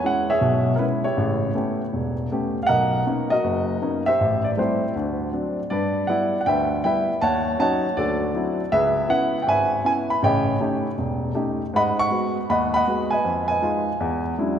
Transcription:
Already playing: B4 C#5
0.03 G#3 C#4 E4 F#5
0.30 G#4 C#5 E5
0.41 B1 B2
0.76 G#3 C#4 E4 A#4 B4
1.04 E4 G4 C#5
1.17 A1 C#3
1.55 A3 B3 C#4 G4
1.93 E1
2.32 A3 B3 C#4 G4
2.63 F5 F#5
2.69 B1 A#4 D#5
3.07 A#3 B3 C#4 D#4
3.30 F#4 A#4 D#5
3.44 F#1
3.82 A#3 B3 C#4 D#4
4.06 G4 C5 E5
4.20 A1
4.44 D5
4.57 G3 A3 C4 E4 G4 C5
4.96 D2
5.33 F#3 C4 D4
5.70 G2 B4 D5
6.07 G3 B3 E4 B4 D5 F#5
6.41 F#5
6.46 D2 B4 E5 G5
6.84 G3 B3 E4 B4 E5 G5
7.21 D#2 C#5 F#5 A5
7.59 F#3 C#4 D#4 C#5 F#5 A5
7.97 D2 F#4 A4 D5
8.34 F#3 C4 D4 E4
8.72 C#2 G#4 B4 E5
9.09 B3 C#4 E4 B4 F#5
9.42 G5
9.47 G#1 B4 E5 G#5
9.85 B3 C#4 E4 G#5
10.10 B5
10.23 A1 C#3 C#5 D#5 G5
10.60 A3 C#4 D#4 G4
10.98 E1
11.35 A3 C#4 D#4 G4
11.73 G#2 D#5 F#5 B5
11.99 F#5 C#6
12.10 G#3 B3 F#4
12.50 D#2 D#5 F#5 B5
12.74 D#5 F#5 B5
12.87 G#3 B3 F#4
13.11 B4 D#5 G#5
13.24 F2
13.48 B4 D#5 G#5
13.62 G#3 D#4 F4
14.00 E2
14.38 F#3 G#3 C#4 D4 E4

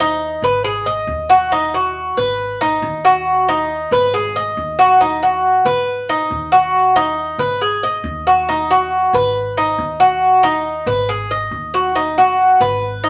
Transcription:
Already playing: D#2
0.00 D#4
0.42 G#1 B4
0.64 G#4
0.86 D#5
1.07 D#2
1.30 F#4
1.52 D#4
1.74 F#4
2.17 G#1 B4
2.61 D#4
2.82 D#2
3.05 F#4
3.49 D#4
3.91 G#1 B4
4.14 G#4
4.36 D#5
4.57 D#2
4.79 F#4
5.01 D#4
5.23 F#4
5.65 G#1 B4
6.09 D#4
6.31 D#2
6.52 F#4
6.96 D#4
7.38 G#1 B4
7.61 G#4
7.83 D#5
8.04 D#2
8.27 F#4
8.49 D#4
8.71 F#4
9.13 G#1 B4
9.57 D#4
9.78 D#2
10.00 F#4
10.43 D#4
10.86 G#1 B4
11.09 G#4
11.31 D#5
11.51 D#2
11.74 F#4
11.95 D#4
12.18 F#4
12.60 G#1 B4
13.04 D#4

